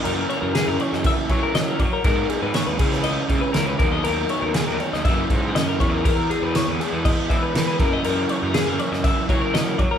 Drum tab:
CC |x-x-x-x-x-x-x-x-|x-x-x-x-x-x-x-x-|x-x-x-x-x-x-x-x-|x-x-x-x-x-x-x-x-|
SD |----o--o----o---|----o--o----o---|----o--o----o---|----o-------o---|
BD |--------o-o---o-|o-----o---o---o-|--------o-o---o-|o-------o-o---o-|

CC |x-x-x-x-x-x-x-x-|
SD |----o--o----o---|
BD |--------o-o---o-|